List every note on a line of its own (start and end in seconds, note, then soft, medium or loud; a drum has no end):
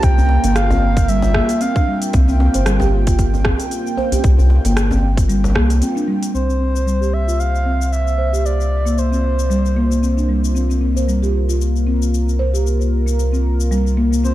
0.00 0.38 C2 medium
0.00 6.30 A#3 medium
0.00 6.31 F4 medium
0.00 0.43 G4 medium
0.00 6.33 G5 medium
0.00 0.55 G5 loud
0.00 kick loud
0.00 open hi-hat soft
0.00 shaker soft
0.18 djembe tone medium
0.18 djembe bass medium
0.18 shaker soft
0.29 djembe slap soft
0.44 1.43 G1 medium
0.44 0.55 A#3 medium
0.44 open hi-hat medium
0.44 djembe tone medium
0.44 shaker medium
0.55 1.10 F5 medium
0.55 cross-stick medium
0.55 open hi-hat soft
0.55 shaker soft
0.70 1.07 C4 medium
0.70 djembe slap medium
0.70 djembe bass medium
0.70 shaker soft
0.97 kick loud
0.97 open hi-hat medium
0.97 shaker medium
1.08 1.34 G3 medium
1.08 1.61 E5 medium
1.08 open hi-hat soft
1.08 shaker medium
1.22 djembe slap medium
1.22 djembe tone medium
1.22 shaker soft
1.34 1.48 A#3 medium
1.34 kick medium
1.34 cross-stick medium
1.49 1.60 A#3 medium
1.49 open hi-hat medium
1.49 djembe slap soft
1.49 shaker medium
1.61 1.69 C4 medium
1.61 1.99 F5 medium
1.61 open hi-hat soft
1.61 shaker medium
1.76 kick loud
1.76 shaker soft
1.88 2.13 G3 medium
2.02 open hi-hat medium
2.02 shaker medium
2.13 2.49 C2 medium
2.13 2.27 C4 medium
2.13 kick loud
2.13 open hi-hat soft
2.13 shaker soft
2.28 2.39 C4 medium
2.28 djembe bass medium
2.28 shaker soft
2.40 2.54 C4 medium
2.40 djembe slap medium
2.54 3.54 G1 medium
2.54 2.66 C5 medium
2.54 open hi-hat soft
2.54 djembe tone medium
2.54 shaker medium
2.66 2.75 G3 medium
2.66 cross-stick medium
2.66 open hi-hat soft
2.66 shaker soft
2.80 2.92 G4 medium
2.80 djembe slap medium
2.80 djembe bass medium
2.80 shaker soft
3.07 3.18 F4 medium
3.07 kick medium
3.07 open hi-hat medium
3.07 shaker medium
3.19 kick medium
3.19 open hi-hat soft
3.19 shaker soft
3.34 djembe tone medium
3.34 shaker soft
3.45 3.59 C4 medium
3.45 kick loud
3.45 cross-stick medium
3.58 open hi-hat medium
3.58 djembe tone medium
3.58 shaker medium
3.71 open hi-hat soft
3.71 shaker medium
3.87 shaker soft
3.97 4.11 C5 medium
3.97 djembe tone medium
4.12 4.63 G4 medium
4.12 open hi-hat medium
4.12 djembe bass medium
4.12 shaker medium
4.24 4.59 C2 loud
4.24 kick loud
4.24 open hi-hat soft
4.24 shaker soft
4.39 djembe tone medium
4.39 djembe bass medium
4.39 shaker soft
4.50 djembe slap medium
4.65 5.57 G1 medium
4.65 4.76 A#3 medium
4.65 open hi-hat medium
4.65 djembe tone medium
4.65 shaker medium
4.77 cross-stick medium
4.77 open hi-hat soft
4.77 shaker medium
4.91 5.28 C4 medium
4.91 djembe slap medium
4.91 djembe bass medium
4.91 shaker soft
5.17 kick loud
5.17 open hi-hat medium
5.17 shaker medium
5.29 5.54 G3 loud
5.29 open hi-hat soft
5.29 shaker medium
5.44 djembe slap medium
5.44 djembe tone medium
5.44 shaker soft
5.55 5.82 C2 medium
5.55 5.69 A#3 loud
5.55 kick medium
5.55 cross-stick medium
5.70 5.81 A#3 medium
5.70 open hi-hat medium
5.70 djembe slap soft
5.70 shaker medium
5.82 5.90 C4 medium
5.82 open hi-hat soft
5.82 shaker medium
5.96 6.07 D4 medium
5.96 shaker soft
6.08 6.33 G3 medium
6.23 open hi-hat medium
6.23 shaker medium
6.34 14.34 C2 medium
6.34 14.34 A#3 medium
6.34 6.47 C4 medium
6.34 14.34 F4 medium
6.34 7.15 C5 medium
6.34 10.52 C5 medium
6.34 shaker soft
6.49 6.59 C4 medium
6.49 shaker soft
6.60 6.74 C4 medium
6.75 6.86 C5 medium
6.75 shaker medium
6.86 6.95 G3 medium
6.86 shaker soft
7.01 7.12 G4 medium
7.01 shaker soft
7.13 7.41 E5 loud
7.27 7.39 F4 medium
7.27 shaker medium
7.39 7.92 F5 loud
7.39 shaker soft
7.55 shaker soft
7.65 7.80 C4 medium
7.82 shaker medium
7.92 8.47 E5 medium
7.92 shaker soft
8.07 shaker soft
8.18 8.32 C5 medium
8.33 8.84 G4 medium
8.33 shaker medium
8.45 9.00 D5 loud
8.45 shaker soft
8.61 shaker soft
8.85 8.97 A#3 medium
8.85 shaker medium
8.98 10.30 C5 medium
8.98 shaker soft
9.12 9.49 C4 medium
9.12 shaker soft
9.39 shaker medium
9.50 9.75 G3 medium
9.50 shaker soft
9.66 shaker soft
9.76 9.90 A#3 medium
9.91 10.02 A#3 medium
9.91 shaker medium
10.03 10.11 C4 medium
10.03 shaker medium
10.17 10.28 D4 medium
10.17 shaker soft
10.29 10.54 G3 medium
10.45 shaker medium
10.55 10.69 C4 medium
10.55 14.34 A#4 medium
10.55 shaker soft
10.70 10.80 C4 medium
10.70 shaker soft
10.81 10.95 C4 medium
10.96 11.08 C5 medium
10.96 shaker medium
11.08 11.16 G3 medium
11.08 shaker soft
11.23 11.34 G4 medium
11.23 shaker soft
11.49 11.60 F4 medium
11.49 shaker medium
11.61 shaker medium
11.76 shaker soft
11.87 12.01 C4 medium
12.02 shaker medium
12.14 shaker medium
12.29 shaker soft
12.39 12.53 C5 medium
12.54 13.05 G4 medium
12.54 shaker medium
12.67 shaker medium
12.81 shaker soft
13.06 13.18 A#3 medium
13.06 shaker medium
13.19 shaker soft
13.33 13.70 C4 medium
13.33 shaker soft
13.60 shaker medium
13.71 13.96 G3 medium
13.71 shaker medium
13.87 shaker soft
13.97 14.11 A#3 medium
14.12 14.23 A#3 medium
14.12 shaker medium
14.24 14.32 C4 medium
14.24 14.34 C5 medium
14.24 shaker medium